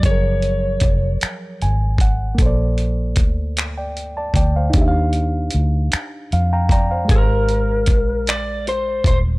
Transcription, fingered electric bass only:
X:1
M:6/8
L:1/8
Q:3/8=51
K:Bb
V:1 name="Fingered electric bass" clef=bass
_G,,,2 F,,, z _A,,,2 | B,,,2 D,,3 D,, | E,,2 D,, z F,,2 | _A,,,2 B,,,3 E,,, |]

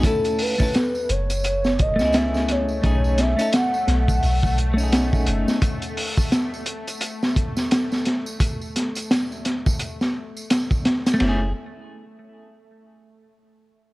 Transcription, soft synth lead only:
X:1
M:4/4
L:1/8
Q:"Swing 16ths" 1/4=86
K:F#dor
V:1 name="Soft synth lead"
A B2 c2 d e c- | c e f3 z3 | z8 | z8 |
z8 |]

